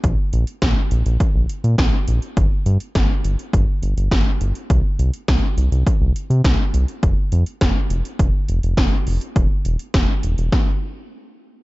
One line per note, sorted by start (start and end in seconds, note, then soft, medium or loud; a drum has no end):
0.04 0.16 A#1 loud
0.04 kick loud
0.04 closed hi-hat medium
0.33 0.45 A#1 loud
0.33 closed hi-hat medium
0.47 closed hi-hat medium
0.62 0.74 A#1 loud
0.62 kick loud
0.62 snare loud
0.62 closed hi-hat medium
0.91 1.03 A#1 loud
0.91 closed hi-hat medium
1.06 1.18 A#1 loud
1.06 closed hi-hat medium
1.20 kick loud
1.20 closed hi-hat medium
1.35 1.47 A#1 medium
1.49 closed hi-hat medium
1.64 1.76 A#2 medium
1.64 closed hi-hat soft
1.78 1.90 A#1 loud
1.78 kick loud
1.78 snare loud
1.78 closed hi-hat medium
2.08 2.20 A#1 loud
2.08 closed hi-hat medium
2.22 closed hi-hat soft
2.37 2.49 G1 loud
2.37 kick loud
2.37 closed hi-hat medium
2.66 2.78 G2 loud
2.66 closed hi-hat medium
2.80 closed hi-hat medium
2.95 3.07 G1 loud
2.95 kick loud
2.95 snare loud
2.95 closed hi-hat medium
3.24 3.36 G1 loud
3.24 closed hi-hat medium
3.39 closed hi-hat soft
3.53 3.65 G1 loud
3.53 kick loud
3.53 closed hi-hat medium
3.82 3.94 G1 loud
3.82 closed hi-hat medium
3.97 4.09 G1 loud
3.97 closed hi-hat soft
4.11 4.23 G1 loud
4.11 kick loud
4.11 snare loud
4.11 closed hi-hat medium
4.41 4.52 G1 loud
4.41 closed hi-hat medium
4.55 closed hi-hat soft
4.70 4.82 C2 loud
4.70 kick loud
4.70 closed hi-hat medium
4.99 5.11 C2 medium
4.99 closed hi-hat medium
5.14 closed hi-hat medium
5.28 5.40 C2 loud
5.28 kick loud
5.28 snare loud
5.28 closed hi-hat medium
5.57 5.69 C2 medium
5.57 closed hi-hat medium
5.72 5.84 C2 loud
5.72 closed hi-hat soft
5.87 kick loud
5.87 closed hi-hat medium
6.01 6.13 C2 medium
6.16 closed hi-hat medium
6.30 6.42 C3 loud
6.30 closed hi-hat soft
6.44 6.56 C2 loud
6.44 kick loud
6.44 snare loud
6.44 closed hi-hat medium
6.74 6.86 C2 loud
6.74 closed hi-hat medium
6.88 closed hi-hat soft
7.03 7.15 F1 loud
7.03 kick loud
7.03 closed hi-hat medium
7.32 7.44 F2 loud
7.32 closed hi-hat medium
7.46 closed hi-hat medium
7.61 7.73 F1 loud
7.61 kick loud
7.61 snare loud
7.61 closed hi-hat medium
7.90 8.02 F1 loud
7.90 closed hi-hat medium
8.05 closed hi-hat medium
8.19 8.31 F1 loud
8.19 kick loud
8.19 closed hi-hat medium
8.48 8.60 F1 loud
8.48 closed hi-hat medium
8.63 8.75 F1 loud
8.63 closed hi-hat soft
8.77 8.89 F1 loud
8.77 kick loud
8.77 snare loud
8.77 closed hi-hat medium
9.07 9.19 F1 loud
9.07 open hi-hat medium
9.21 closed hi-hat medium
9.36 9.48 E1 loud
9.36 kick loud
9.36 closed hi-hat medium
9.65 9.77 E1 loud
9.65 closed hi-hat medium
9.79 closed hi-hat medium
9.94 10.06 E1 loud
9.94 kick loud
9.94 snare loud
9.94 closed hi-hat medium
10.23 10.35 E1 medium
10.23 closed hi-hat medium
10.38 10.50 E1 loud
10.38 closed hi-hat medium
10.52 kick loud
10.52 snare medium